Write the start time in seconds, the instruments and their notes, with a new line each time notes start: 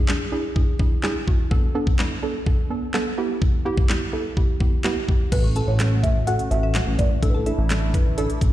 0.08 synth pluck D4 E4 G#4, snare, clap
0.32 synth pluck D4 E4 G#4
0.56 synth pluck D4 E4 G#4, kick
0.79 synth pluck D4 E4 G#4, kick
1.03 synth pluck D4 E4 G#4, snare, clap
1.27 synth pluck D4 E4 F#4, kick
1.51 synth pluck B3 D4 A4, kick
1.75 synth pluck B3 D4 A4
1.87 kick
1.99 synth pluck B3 D4 E4, snare, clap
2.23 synth pluck B3 D4 A4
2.46 synth pluck B3 D4 A4, kick
2.70 synth pluck B3 D4 A4
2.94 synth pluck B3 D4 A4, snare, clap
3.18 synth pluck B3 E4 G4
3.42 kick
3.65 synth pluck B3 E4 G4
3.77 kick
3.89 synth pluck B3 E4 G4, snare, clap
4.13 synth pluck B3 E4 A4
4.37 synth pluck B3 E4 G4, kick
4.60 synth pluck B3 E4 G4, kick
4.84 synth pluck B3 E4 G4, snare, clap
5.08 synth pluck B3 E4 G4, kick
5.32 analog synth bass A1, analog synth pad A3 C#4 F#4, synth pluck C#4 F#4 A4, marimba B4, synth arpeggio sound F#6, kick, closed hi-hat, crash
5.44 synth arpeggio sound C#6
5.56 synth pluck C#4 F#4 A4, synth arpeggio sound A5, closed hi-hat
5.68 analog synth bass A1, marimba C#5
5.80 synth pluck C#4 F#4 A4, snare, clap, closed hi-hat
5.92 synth arpeggio sound C#4
6.03 synth arpeggio sound A3, synth pluck C#4 F#4 A4, marimba E5, kick, closed hi-hat
6.16 synth arpeggio sound E3
6.27 synth pluck C#4 F#4 A4, marimba F#5, synth arpeggio sound F#6, closed hi-hat
6.39 closed hi-hat
6.51 analog synth bass A1, synth pluck C#4 F#4 A4, marimba E5, closed hi-hat
6.63 synth arpeggio sound E5
6.75 synth pluck C#4 F#4 A4, synth arpeggio sound F#4, snare, clap, closed hi-hat
6.87 analog synth bass A1, synth arpeggio sound C#4
6.99 analog synth bass A1, synth arpeggio sound A3, synth pluck C#4 F#4 B4, marimba D5, kick, closed hi-hat
7.11 synth arpeggio sound E3
7.22 analog synth bass A1, analog synth pad A3 D4 E4, synth pluck D4 E4 A4, marimba A4, synth arpeggio sound E6, kick, closed hi-hat
7.29 marimba B4
7.34 marimba A4, synth arpeggio sound A5
7.46 synth pluck D4 E4 A4, synth arpeggio sound E5, closed hi-hat
7.58 analog synth bass A1
7.70 synth pluck D4 E4 A4, snare, clap, closed hi-hat
7.82 synth arpeggio sound A3
7.94 synth arpeggio sound E3, synth pluck D4 E4 B4, kick, closed hi-hat
8.06 synth arpeggio sound D3
8.18 synth pluck D4 E4 A4, synth arpeggio sound E6, closed hi-hat
8.30 closed hi-hat
8.41 analog synth bass A1, synth pluck D4 E4 A4, kick, closed hi-hat